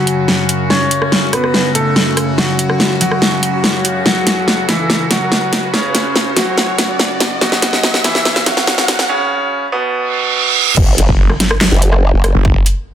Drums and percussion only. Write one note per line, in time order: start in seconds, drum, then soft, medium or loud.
0.07 closed hi-hat medium
0.28 snare medium
0.49 closed hi-hat medium
0.70 snare medium
0.91 closed hi-hat medium
1.02 cross-stick soft
1.12 snare medium
1.33 cross-stick medium
1.33 closed hi-hat medium
1.44 cross-stick soft
1.54 snare medium
1.75 closed hi-hat medium
1.96 snare medium
2.17 cross-stick soft
2.17 closed hi-hat medium
2.38 snare medium
2.59 closed hi-hat medium
2.70 cross-stick soft
2.80 snare medium
3.01 closed hi-hat medium
3.12 cross-stick soft
3.22 snare medium
3.43 closed hi-hat medium
3.64 snare medium
3.85 closed hi-hat medium
4.06 snare medium
4.27 snare medium
4.27 closed hi-hat medium
4.48 snare medium
4.69 snare medium
4.69 closed hi-hat medium
4.90 snare medium
5.11 snare medium
5.11 closed hi-hat medium
5.32 snare medium
5.53 snare medium
5.53 closed hi-hat medium
5.74 snare medium
5.95 snare medium
5.95 closed hi-hat medium
6.16 snare medium
6.37 snare medium
6.37 closed hi-hat medium
6.58 snare medium
6.78 snare medium
6.78 closed hi-hat medium
6.99 snare medium
7.20 snare medium
7.20 closed hi-hat medium
7.41 snare medium
7.52 snare medium
7.62 snare medium
7.62 closed hi-hat medium
7.73 snare medium
7.83 snare medium
7.94 snare medium
8.04 snare loud
8.04 closed hi-hat medium
8.15 snare medium
8.25 snare medium
8.36 snare medium
8.46 snare loud
8.46 closed hi-hat medium
8.57 snare medium
8.67 snare loud
8.78 snare medium
8.88 snare loud
8.88 closed hi-hat medium
8.99 snare medium
10.77 kick loud
10.77 crash loud
10.98 closed hi-hat medium
11.09 kick medium
11.30 cross-stick medium
11.40 snare medium
11.40 closed hi-hat medium
11.51 cross-stick medium
11.61 snare loud
11.61 clap loud
11.82 closed hi-hat medium
11.93 cross-stick medium
12.24 cross-stick medium
12.24 closed hi-hat medium
12.45 kick loud
12.66 closed hi-hat medium